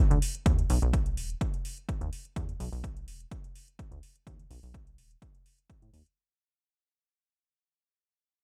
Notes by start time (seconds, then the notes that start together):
0.11 D2, closed hi-hat
0.22 open hi-hat
0.35 closed hi-hat
0.46 D#2, kick, closed hi-hat
0.59 closed hi-hat
0.70 B1, open hi-hat
0.82 B1, closed hi-hat
0.93 kick, closed hi-hat
1.06 closed hi-hat
1.17 D#1, open hi-hat
1.30 closed hi-hat
1.41 kick, closed hi-hat
1.54 closed hi-hat
1.65 open hi-hat
1.77 closed hi-hat
1.89 kick, closed hi-hat
2.01 D#2, closed hi-hat
2.13 open hi-hat
2.25 closed hi-hat
2.36 E2, kick, closed hi-hat
2.49 closed hi-hat
2.60 B1, open hi-hat
2.72 B1, open hi-hat
2.84 kick, closed hi-hat
2.97 closed hi-hat
3.07 E1, open hi-hat
3.20 closed hi-hat
3.31 kick, closed hi-hat
3.44 closed hi-hat
3.55 open hi-hat
3.68 closed hi-hat
3.79 kick, closed hi-hat
3.91 D2, closed hi-hat
4.03 open hi-hat
4.16 closed hi-hat
4.27 D#2, kick, closed hi-hat
4.39 closed hi-hat
4.51 B1, open hi-hat
4.63 B1, open hi-hat
4.74 kick, closed hi-hat
4.87 closed hi-hat
4.98 D#1, open hi-hat
5.11 closed hi-hat
5.22 kick, closed hi-hat
5.35 closed hi-hat
5.46 open hi-hat
5.58 closed hi-hat
5.70 kick, closed hi-hat
5.82 A2, closed hi-hat
5.93 D#2, open hi-hat
6.06 closed hi-hat